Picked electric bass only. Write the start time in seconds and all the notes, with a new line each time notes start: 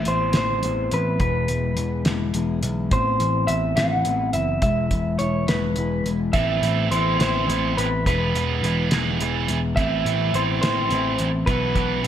0.07 A1
0.35 A1
0.64 A1
0.93 A1
1.20 E1
1.49 E1
1.77 E1
2.05 E1
2.35 E1
2.63 B1
2.92 A1
3.20 A1
3.49 A1
3.77 A1
4.06 A1
4.34 F#1
4.62 E1
4.91 E1
5.19 E1
5.48 E1
5.77 E1
6.04 E1
6.34 A1
6.62 A1
6.90 A1
7.19 A1
7.48 A1
7.77 A1
8.06 E1
8.34 E1
8.63 E1
8.92 E1
9.21 E1
9.49 E1
9.78 A1
10.06 A1
10.34 A1
10.62 A1
10.91 A1
11.20 A1
11.47 B1
11.76 B1